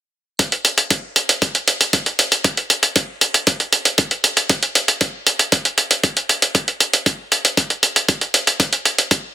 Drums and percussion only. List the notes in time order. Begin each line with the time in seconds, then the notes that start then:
0.39 kick, closed hi-hat
0.52 closed hi-hat
0.65 closed hi-hat
0.78 closed hi-hat
0.90 kick, closed hi-hat
1.16 closed hi-hat
1.29 closed hi-hat
1.42 kick, closed hi-hat
1.55 closed hi-hat
1.68 closed hi-hat
1.81 closed hi-hat
1.93 kick, closed hi-hat
2.06 closed hi-hat
2.19 closed hi-hat
2.32 closed hi-hat
2.44 kick, closed hi-hat
2.57 closed hi-hat
2.70 closed hi-hat
2.83 closed hi-hat
2.96 kick, closed hi-hat
3.21 closed hi-hat
3.34 closed hi-hat
3.47 kick, closed hi-hat
3.60 closed hi-hat
3.73 closed hi-hat
3.85 closed hi-hat
3.98 kick, closed hi-hat
4.11 closed hi-hat
4.24 closed hi-hat
4.37 closed hi-hat
4.49 kick, closed hi-hat
4.63 closed hi-hat
4.75 closed hi-hat
4.88 closed hi-hat
5.01 kick, closed hi-hat
5.27 closed hi-hat
5.39 closed hi-hat
5.52 kick, closed hi-hat
5.65 closed hi-hat
5.78 closed hi-hat
5.91 closed hi-hat
6.04 kick, closed hi-hat
6.17 closed hi-hat
6.29 closed hi-hat
6.42 closed hi-hat
6.55 kick, closed hi-hat
6.68 closed hi-hat
6.80 closed hi-hat
6.93 closed hi-hat
7.06 kick, closed hi-hat
7.32 closed hi-hat
7.45 closed hi-hat
7.57 kick, closed hi-hat
7.70 closed hi-hat
7.83 closed hi-hat
7.96 closed hi-hat
8.09 kick, closed hi-hat
8.21 closed hi-hat
8.34 closed hi-hat
8.47 closed hi-hat
8.60 kick, closed hi-hat
8.73 closed hi-hat
8.85 closed hi-hat
8.98 closed hi-hat
9.11 kick, closed hi-hat